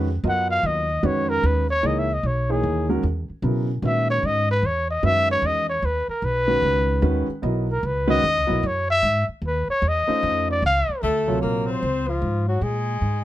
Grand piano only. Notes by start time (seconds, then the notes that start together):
0.24 F#3 B3 F4 A#4 D#5
1.03 D#3 G#3 C#4 F#4 B4
1.83 E3 A#3 D#4 G#4 C#5
2.49 E3 A#3 D#4 G#4 C#5
2.89 D#3 G#3 C#4 F#4 A#4
3.43 C#3 F#3 B3 E4 A#4
3.83 D#3 G#3 C#4 F#4 B4
5.03 D#3 G#3 C#4 F#4 B4
6.47 D#3 G#3 C#4 F#4 B4
7.02 D#3 G#3 C#4 F#4 B4
7.42 F#3 B3 E4 A#4 D#5
8.07 D#3 G#3 C#4 F#4 B4
8.47 F#3 B3 E4 A#4 D#5
10.07 A3 C#4 D#4 F4 C5
11.27 C3 F#3 F4 A#4 C#5